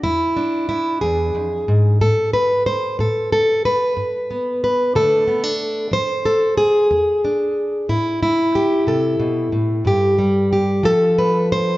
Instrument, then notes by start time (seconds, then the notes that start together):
steel-string acoustic guitar
0.03 E2 E4
0.36 D4
0.69 E4
1.01 E2 G#4
1.35 F2
1.68 G#2
2.01 A2 A4
2.33 B4
2.66 C5
2.99 A2 A4
3.32 A4
3.65 B4
3.97 G2
4.31 B3
4.64 B4
4.95 D3 A3 D4 A4
5.28 B3
5.44 D4
5.91 F3 C5
6.25 A4
6.57 G#4
6.91 E2
7.25 D4
7.89 A2 E4
8.23 E4
8.55 G4
8.87 C3 A4
9.20 B2
9.52 A2
9.85 G2 G4
10.19 G3
10.53 G4
10.83 F3 A4
11.18 B4
11.52 C5